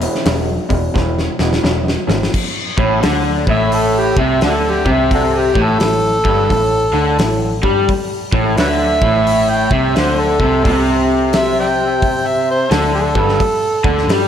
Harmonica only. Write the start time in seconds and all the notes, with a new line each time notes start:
3.51 E5
3.74 A4
3.99 G4
4.21 E5
4.45 D4 F#4 A4
4.70 G4
4.92 E5
5.15 D4 F#4 A4
5.39 G4
5.64 A4
8.60 B4 C#5 E5
9.50 G5
9.73 E5
9.98 C5
10.21 A4
11.35 E5
11.60 D5 E5 G5
12.27 E5
12.51 C5
12.73 A4
12.95 A4